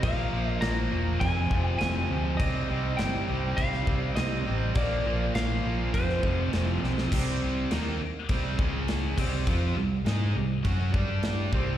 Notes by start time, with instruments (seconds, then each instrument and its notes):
0.03 fingered electric bass A#1, distorted electric guitar A#2 F3 A#3 D4, lead electric guitar F5, kick, crash
0.33 fingered electric bass A#1, distorted electric guitar A#2 F3 A#3
0.50 lead electric guitar D#5
0.61 fingered electric bass A#1, distorted electric guitar A#2 F3 A#3, lead electric guitar A#5, snare, crash
0.91 fingered electric bass E1, distorted electric guitar A#2 F3 A#3
1.20 fingered electric bass F1, distorted electric guitar F2 C3 F3 G#3 C4, lead electric guitar G#5, kick, crash
1.50 fingered electric bass F1, distorted electric guitar F2 C3 F3, kick
1.64 lead electric guitar G5
1.79 fingered electric bass F1, distorted electric guitar F2 C3 F3, lead electric guitar G#5, snare, crash
2.10 fingered electric bass D2, distorted electric guitar F2 C3 F3
2.37 fingered electric bass C2, distorted electric guitar C3 G3 C4, lead electric guitar D#5, kick, crash
2.42 distorted electric guitar D#4
2.70 fingered electric bass C2, distorted electric guitar C3 G3 C4
2.97 fingered electric bass G1, distorted electric guitar C3 G3 C4, lead electric guitar G5, snare, crash
3.28 fingered electric bass C2, distorted electric guitar C3 G3 C4
3.57 fingered electric bass C2, distorted electric guitar C3 G3 C4, lead electric guitar F5, kick, crash
3.73 snare
3.87 fingered electric bass C2, distorted electric guitar C3 G3 C4, kick
4.15 fingered electric bass C2, distorted electric guitar C3 G3 C4, lead electric guitar D#5, snare, crash
4.47 fingered electric bass A1, distorted electric guitar C3 G3 C4
4.75 fingered electric bass A#1, distorted electric guitar A#2 F3 A#3 D4, lead electric guitar D5, kick, crash
5.05 fingered electric bass A#1, distorted electric guitar A#2 F3 A#3
5.35 fingered electric bass A#1, distorted electric guitar A#2 F3 A#3, lead electric guitar F5, snare, crash
5.64 fingered electric bass A#1, distorted electric guitar A#2 F3 A#3
5.94 fingered electric bass F1, distorted electric guitar F2 C3 F3 G#3 C4, lead electric guitar C5, kick, crash
6.09 snare
6.23 fingered electric bass F1, distorted electric guitar F2 C3 F3, kick
6.52 fingered electric bass F1, distorted electric guitar F2 C3 F3, snare, crash
6.82 fingered electric bass B1, distorted electric guitar F2 C3 F3, snare
6.98 snare
7.12 fingered electric bass C2, distorted electric guitar C3 G3 C4, kick, crash
7.71 fingered electric bass D#2, distorted electric guitar D#3 A#3 D#4, snare, crash
8.00 muted fingered electric bass stroke, muted distorted electric guitar stroke
8.29 fingered electric bass C2, distorted electric guitar C3 G3 C4, kick, crash
8.59 fingered electric bass C#2, distorted electric guitar C#3 G#3 C#4, kick
8.88 snare, crash
9.18 fingered electric bass C2, distorted electric guitar C3 G3 C4, kick, crash
9.47 fingered electric bass F2, distorted electric guitar F3 C4 F4, kick, crash
9.77 fingered electric bass C2, distorted electric guitar C3 G3
10.05 fingered electric bass G#2, distorted electric guitar G#3 D#4 G#4, snare, crash
10.35 fingered electric bass C2, distorted electric guitar C3 G3
10.63 fingered electric bass F#2, distorted electric guitar F#3 C#4 F#4, kick, crash
10.93 fingered electric bass G2, distorted electric guitar G3 D4 G4, kick
11.23 snare, crash
11.52 fingered electric bass C2, distorted electric guitar C3 G3 C4, kick